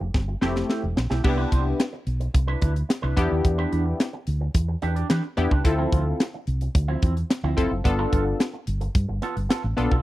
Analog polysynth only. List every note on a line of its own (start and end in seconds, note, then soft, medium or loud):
0.41 0.85 A3 medium
0.41 0.85 C4 medium
0.41 0.85 E4 medium
0.41 0.85 G4 medium
1.24 1.82 B3 loud
1.24 1.82 D4 medium
1.24 1.82 E4 medium
1.24 1.82 G4 loud
3.16 4.05 B3 loud
3.16 4.05 D4 loud
3.16 4.05 E4 loud
3.16 4.05 G4 loud
5.37 5.51 B3 loud
5.37 5.51 D4 medium
5.37 5.51 E4 medium
5.37 5.52 G4 loud
5.64 6.22 C4 medium
5.64 6.23 E4 medium
5.64 6.23 F4 medium
5.64 6.23 A4 loud
7.57 7.71 C4 loud
7.57 7.71 E4 medium
7.57 7.71 F4 medium
7.57 7.72 A4 loud
7.84 8.42 B3 loud
7.84 8.43 D4 medium
7.84 8.43 F4 medium
7.84 8.43 A4 loud
9.77 9.91 B3 loud
9.77 9.91 D4 medium
9.77 9.91 F4 medium
9.77 9.92 A4 loud